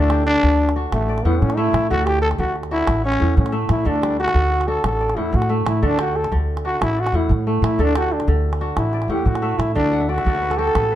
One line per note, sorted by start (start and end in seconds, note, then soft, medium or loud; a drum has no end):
0.00 0.36 D2 loud
0.00 0.42 D3 medium
0.00 1.57 A3 medium
0.00 0.24 D4 loud
0.00 0.47 D4 medium
0.00 0.17 F#4 medium
0.00 1.26 A4 medium
0.00 0.22 D5 medium
0.00 0.65 E5 medium
0.00 0.17 F#5 medium
0.00 calabash click soft
0.10 0.82 G4 medium
0.10 calabash click medium
0.26 0.72 D4 loud
0.43 0.85 D2 medium
0.43 0.97 D3 medium
0.43 calabash thump medium
0.43 calabash click soft
0.69 calabash click soft
0.76 2.44 D4 medium
0.76 2.12 F#4 medium
0.92 1.20 A1 medium
0.92 1.26 A3 medium
0.92 calabash thump medium
0.92 calabash click medium
1.09 2.20 D5 medium
1.09 calabash click soft
1.18 calabash click soft
1.25 1.39 E2 medium
1.25 1.95 A2 medium
1.25 1.42 B3 medium
1.25 2.12 F#5 medium
1.41 1.69 A2 medium
1.41 1.58 C#4 medium
1.41 calabash thump medium
1.41 calabash click soft
1.50 calabash click soft
1.57 3.52 A3 medium
1.57 1.90 E4 loud
1.57 2.61 E5 medium
1.73 1.87 A2 medium
1.73 calabash click medium
1.90 2.32 D2 loud
1.90 2.38 D3 medium
1.90 2.07 F#4 loud
1.90 3.22 A4 medium
1.90 calabash thump medium
1.90 calabash click soft
2.05 2.21 G4 loud
2.05 2.77 G4 medium
2.05 calabash click medium
2.21 2.29 A4 loud
2.21 calabash click soft
2.31 calabash click soft
2.38 2.81 D2 medium
2.38 2.93 D3 medium
2.38 2.54 F#4 loud
2.38 calabash thump medium
2.56 calabash click soft
2.63 calabash click soft
2.71 3.10 D4 medium
2.71 3.02 E4 medium
2.71 4.08 F#4 medium
2.87 3.16 A1 medium
2.87 calabash thump medium
2.87 calabash click medium
3.04 3.35 C#4 loud
3.04 3.92 C#5 medium
3.12 calabash click soft
3.20 3.35 E2 medium
3.20 3.91 A2 medium
3.20 4.08 F#5 medium
3.20 calabash click soft
3.37 3.65 A2 loud
3.37 3.53 C#4 medium
3.37 calabash thump medium
3.37 calabash click soft
3.46 calabash click medium
3.52 5.49 A3 medium
3.52 4.56 E5 medium
3.52 calabash click soft
3.69 3.83 A2 medium
3.69 3.89 E4 medium
3.69 calabash click medium
3.85 4.27 D2 loud
3.85 4.34 D3 medium
3.85 4.19 D4 loud
3.85 5.17 A4 medium
3.85 calabash thump medium
3.95 calabash click soft
4.02 4.40 G3 medium
4.02 calabash click medium
4.20 4.69 F#4 loud
4.20 calabash click soft
4.28 calabash click medium
4.34 4.76 D2 medium
4.34 4.89 D3 medium
4.34 calabash thump medium
4.34 calabash click soft
4.61 calabash click medium
4.67 6.36 D4 medium
4.67 6.04 F#4 medium
4.67 4.84 A4 loud
4.84 5.12 A1 medium
4.84 5.18 A4 medium
4.84 calabash thump medium
4.84 calabash click medium
5.00 6.11 D5 medium
5.00 calabash click soft
5.10 calabash click soft
5.16 5.31 E2 medium
5.16 5.87 A2 medium
5.16 5.37 E4 medium
5.16 6.04 F#5 medium
5.33 5.61 A2 loud
5.33 5.51 F#4 loud
5.33 calabash thump medium
5.33 calabash click soft
5.42 calabash click medium
5.49 7.47 A3 medium
5.49 6.53 E5 medium
5.65 5.80 A2 medium
5.65 5.86 E4 medium
5.65 calabash click medium
5.82 6.24 D2 medium
5.82 6.31 D3 medium
5.82 5.99 D4 loud
5.82 7.14 A4 medium
5.82 calabash thump medium
5.98 6.18 F#4 medium
5.98 6.71 G4 medium
5.98 calabash click medium
6.16 6.32 A4 medium
6.16 calabash click soft
6.24 calabash click medium
6.32 6.73 D2 medium
6.32 6.86 D3 medium
6.32 calabash thump medium
6.32 calabash click soft
6.57 calabash click soft
6.65 8.33 D4 medium
6.65 8.02 F#4 medium
6.65 6.80 F#4 medium
6.81 7.09 A1 loud
6.81 7.01 E4 loud
6.81 calabash thump medium
6.81 calabash click medium
6.97 7.17 F#4 loud
6.97 8.08 D5 medium
6.97 calabash click soft
7.07 calabash click medium
7.13 7.27 E2 medium
7.13 7.84 A2 medium
7.13 7.31 E4 medium
7.13 8.02 F#5 medium
7.29 7.57 A2 loud
7.29 calabash thump medium
7.29 calabash click soft
7.47 9.42 A3 medium
7.62 7.76 A2 medium
7.62 7.83 E4 medium
7.62 calabash click medium
7.79 8.21 D2 loud
7.79 8.27 D3 medium
7.79 7.97 D4 loud
7.79 9.11 A4 medium
7.79 calabash thump medium
7.89 calabash click soft
7.95 8.14 F#4 loud
7.95 8.67 G4 medium
7.95 calabash click medium
8.12 8.29 D4 medium
8.12 calabash click soft
8.20 calabash click soft
8.27 8.70 D2 medium
8.27 8.82 D3 medium
8.27 calabash thump medium
8.27 calabash click soft
8.53 calabash click soft
8.61 10.29 D4 medium
8.61 10.07 F#4 medium
8.76 9.05 A1 medium
8.76 9.12 E4 medium
8.76 calabash thump medium
8.76 calabash click medium
8.93 10.04 D5 medium
8.93 calabash click soft
9.02 calabash click soft
9.08 9.23 E2 medium
9.08 9.81 A2 medium
9.08 9.29 G4 medium
9.08 9.92 F#5 medium
9.25 9.54 A2 medium
9.25 9.60 F#4 medium
9.25 calabash thump medium
9.25 calabash click soft
9.35 calabash click medium
9.42 10.95 A3 medium
9.42 10.00 E5 medium
9.58 9.73 A2 medium
9.58 9.74 E4 medium
9.58 calabash click medium
9.75 10.18 D2 loud
9.75 10.26 D3 medium
9.75 10.11 D4 loud
9.75 calabash thump medium
9.92 10.64 F#5 medium
10.00 10.17 E5 medium
10.09 10.59 F#4 loud
10.09 10.26 D5 medium
10.09 calabash click soft
10.18 10.95 E5 medium
10.18 calabash click soft
10.25 10.67 D2 medium
10.25 10.80 D3 medium
10.25 10.95 D5 medium
10.25 calabash thump medium
10.35 10.95 C#5 medium
10.35 calabash click soft
10.42 10.74 B4 medium
10.50 10.67 A4 medium
10.50 calabash click soft
10.58 10.95 F#4 medium
10.58 10.95 G4 medium
10.58 10.95 A4 loud
10.67 10.82 A4 medium
10.67 calabash click soft
10.75 10.95 A1 medium
10.75 10.91 B4 medium
10.75 calabash thump medium
10.75 calabash click medium
10.83 10.95 A4 medium
10.92 10.95 B4 medium